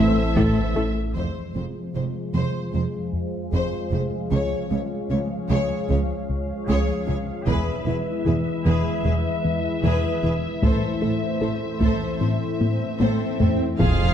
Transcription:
Already playing: A1 A2 E3 A3 C4 E4 A4 C5 E5
0.36 A1 A2 A3 A4, taiko
0.76 A1 A2 A3 E4 A4
1.15 F1 F2 F3 G#3 G#4 C5 F5, taiko
1.55 F1 F2 F3 C4 G#4 C5
1.95 F1 F2 F3 C4 G#4 C5
2.34 F1 F2 F3 G#4 C5
2.73 F1 F2 G#3 G#4 C5
3.13 F2
3.52 F1 F2 F3 G#4 C5
3.92 F1 F2 F4 G#4 C5
4.31 C#2 C#3 G#4 C#5
4.71 C#2 C#3 G#3 G#4 C#5
5.10 C#2 C#3 G#3 G#4 C#5
5.49 C#2 C#3 G#4 C#5
5.88 C#2 F3 G#4 C#5
6.29 C#2
6.67 C#2 C#3 G#4 C#5
7.06 C#2 C#4 G#4 C#5
7.47 E1 E2 E3 G#3 E4 G#4 B4 E5, taiko
7.86 E1 E2 E3 B3 G#4 B4
8.26 E1 E2 E3 B3 G#4 B4
8.65 E1 E2 E3 G#4 B4
9.05 E1 E2 G#3 G#4 B4
9.45 E2
9.84 E1 E2 E3 G#4 B4
10.23 E1 E2 E4 G#4 B4
10.62 A1 A2 A3 A4 C5, taiko, swell
11.02 A1 A2 A3 E4 A4 C5
11.41 A1 A2 A3 E4 A4 C5
11.81 A1 A2 A3 A4 C5, taiko
12.20 A1 A2 C4 A4 C5
12.61 A2, taiko high
13.00 A1 A2 A3 A4 C5, taiko high
13.40 A1 A2 A4 C5, taiko low
13.79 F1 F2 F3 G#3 F4 G#4 C5 F5, taiko, sub drop

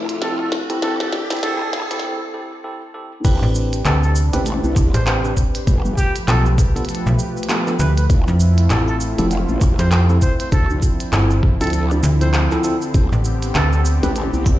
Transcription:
Already playing: C3 F3 A3 E4, riser
0.09 F2, closed hi-hat
0.22 C4 E4 G4 A4, snare, closed hi-hat
0.39 A4
0.52 snare
0.70 C4 E4 G4 A4, closed hi-hat
0.82 D2 C4 D4 E4 G4 A4, snare, closed hi-hat
1.00 D2 A4, snare
1.12 snare
1.30 C4 E4 G4 A4, snare, closed hi-hat
1.32 closed hi-hat
1.37 closed hi-hat
1.39 closed hi-hat
1.41 G1 A4, snare, closed hi-hat
1.43 C4 E4 G4 A4, closed hi-hat
1.61 A4
1.73 snare
1.91 G1 C4 E4 G4 A4, snare, closed hi-hat
1.99 E4 G4 A4, snare
2.04 C4
2.34 C4 E4 G4 A4
2.64 C4 E4 G4 A4
2.94 C4 E4 G4 A4
3.25 A1 C3 C4 D4 G4 B4, kick, closed hi-hat, crash, shaker
3.42 A1, shaker
3.55 shaker
3.73 closed hi-hat, shaker
3.85 D2 C4 D4 G4 A4 B4, clap, closed hi-hat, shaker
4.03 A4, shaker
4.16 shaker
4.33 A1 C4 D4 G4 B4, closed hi-hat, shaker
4.46 closed hi-hat, shaker
4.64 C2, shaker
4.76 kick, shaker
4.94 A1 C5, cross-stick, closed hi-hat, shaker
5.06 C4 D4 G4 B4 C5, clap, closed hi-hat, shaker
5.24 C4 D4 G4 B4, shaker
5.37 kick, shaker
5.55 closed hi-hat, shaker
5.67 G1 F3 A3, kick, closed hi-hat, shaker
5.85 G1, shaker
5.97 G4, kick, shaker
6.16 closed hi-hat, shaker
6.28 B1 B3 D4 F4 A4, clap, closed hi-hat, shaker
6.46 shaker
6.58 kick, cross-stick, shaker
6.76 B3 D4 F4 A4, closed hi-hat, shaker
6.85 closed hi-hat
6.89 closed hi-hat, shaker
6.95 closed hi-hat
7.07 B1, shaker
7.19 shaker
7.37 shaker
7.43 closed hi-hat
7.49 B3 D4 F4 A4, clap, closed hi-hat, shaker
7.67 B3 D4 F4 A4, clap, shaker
7.79 D2 B4, shaker
7.97 B4, closed hi-hat, shaker
8.10 F1 C4 E4 F4, kick, closed hi-hat, shaker
8.28 F2, shaker
8.40 shaker
8.58 closed hi-hat, shaker
8.70 A1 C4 E4 G4 A4, clap, closed hi-hat, shaker
8.88 A4, shaker
9.01 shaker
9.19 F1 C4 E4 G4 A4, closed hi-hat, shaker
9.31 closed hi-hat, shaker
9.49 A1, shaker
9.61 kick, shaker
9.79 F2 C5, cross-stick, closed hi-hat, shaker
9.92 C4 E4 G4 A4 C5, clap, closed hi-hat, shaker
10.09 C4 E4 G4 A4, shaker
10.22 C5, kick, shaker
10.40 C5, closed hi-hat, shaker
10.52 D2 D3 F3 E4 A4, kick, closed hi-hat, shaker
10.70 D2, shaker
10.82 kick, shaker
11.00 closed hi-hat, shaker
11.13 G1 C4 E4 F4 A4, clap, closed hi-hat, shaker
11.31 shaker
11.43 kick, cross-stick
11.61 D2 C4 E4 F4 A4, closed hi-hat, shaker
11.64 closed hi-hat
11.67 closed hi-hat
11.70 A4, closed hi-hat
11.73 closed hi-hat, shaker
11.91 shaker
12.03 D2, shaker
12.21 C4 E4 F4 A4 C5, closed hi-hat, shaker
12.34 C5, clap, closed hi-hat, shaker
12.51 C4 E4 F4 A4, clap, shaker
12.64 C4 E4 F4 A4, shaker
12.82 shaker
12.94 A1 B3 C4 G4, kick, closed hi-hat, shaker
13.12 A1, shaker
13.25 shaker
13.43 closed hi-hat, shaker
13.55 D2 C4 D4 G4 A4 B4, clap, closed hi-hat, shaker
13.73 A4, shaker
13.85 shaker
14.03 A1 C4 D4 G4 B4, closed hi-hat, shaker
14.16 closed hi-hat, shaker
14.33 C2, shaker
14.46 kick, shaker

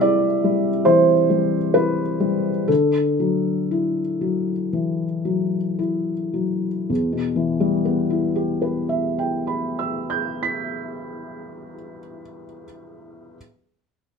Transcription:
Already playing: C3 G3 E5
0.01 E4 D5
0.44 G3
0.85 E3 C5
1.30 G3
1.74 E4 B4
2.20 G3
2.68 D3 A4
3.20 F#3
3.71 E4
4.21 F#3
4.73 E3
5.25 F#3
5.79 E4
6.34 F#3
6.90 E2
7.13 B2
7.36 E3
7.60 G3
7.85 B3
8.10 E4
8.36 G4
8.62 B4
8.89 E5
9.19 G5
9.47 B5
9.79 E6
10.10 G6
10.43 B6

